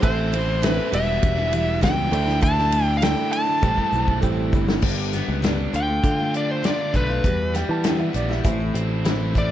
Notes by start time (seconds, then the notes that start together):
0.02 A1 A2 E3 A3 C4 E4 A4 C5 E5, kick, ride, shaker
0.32 E3 A3 C4 E4, ride, shaker
0.62 A2 E3 A3 C4 E4 A4 B4 C5 E5, snare, ride, shaker
0.78 A3 C4 E4
0.92 E1 E2 B2 E3 G3 B3 D4 E4 G4 D5 E5, ride, shaker
1.23 E1, kick, ride, shaker
1.37 E3 G3 D4 E4
1.51 E3 G3 D4 E4, ride, shaker
1.81 C#2 E2 B2 E3 G3 D4 E4 G4 D5 G5, kick, snare, ride, shaker
2.10 D2 D3 A3 D4 E4 A4 D5 E5, ride, shaker
2.26 A3 D4 E4, snare
2.41 D3 A3 D4 E4 A5, kick, ride, shaker
2.58 snare
2.71 D3 A3 D4 E4, ride, shaker
2.85 G5
2.97 D3 F5
3.02 A3 D4 E4 A4 D5 G5, snare, ride, shaker
3.16 A3 D4 E4
3.32 A5, ride, shaker
3.46 A3 D4 E4
3.62 A1 A2 E3 G3 A3 C4 E4 A4 C5 G5, kick, shaker
3.77 G3 C4 E4, kick
3.92 B1 E3 G3 C4 E4, shaker
4.08 kick
4.21 A1 A2 E3 G3 C4 E4 A4 C5 G5, kick, shaker
4.52 G1 E3 G3 C4 E4, kick, shaker
4.68 G3 C4 E4, snare
4.81 G1 G2 D3 G3 B3 D4 G4, kick, crash
5.11 G3 B3 D4 G4, snare, closed hi-hat
5.28 C#2
5.42 G2 D3 G3 B3 D4 G4, snare, closed hi-hat
5.58 G3 B3 D4 G4
5.73 D2 D3 A3 D4 F4 G5, closed hi-hat
5.87 A3 D4 F4
6.04 D3 F4, kick, closed hi-hat
6.18 A3 D4 F4
6.34 D4 D5, closed hi-hat
6.51 C5
6.63 D3 A3 D4 F4 D5, snare, closed hi-hat
6.93 B1 D3 A3 D4 F4 B4, kick, closed hi-hat
7.09 A3 D4 F4
7.24 E2 B2 E3 G3 B3 E4, kick, closed hi-hat
7.54 E3 G3 B3 E4 G5, snare, closed hi-hat
7.69 E3 A5
7.84 E2 B2 E3 G3 B3 E4 G5, snare, closed hi-hat
7.98 E3 G3 B3 E4 E5
8.13 A#1 E3 G3 B3 E4 D5, closed hi-hat
8.29 E3 G3 B3 E4 E5, snare
8.44 A1 A2 E3 A3 C4 E4 E5, kick, closed hi-hat
8.59 A3 C4 E4
8.74 A1 C4, closed hi-hat
9.04 A2 E3 A3 C4 E4, snare, closed hi-hat
9.34 E3 A3 C4 E4, kick, closed hi-hat
9.38 D5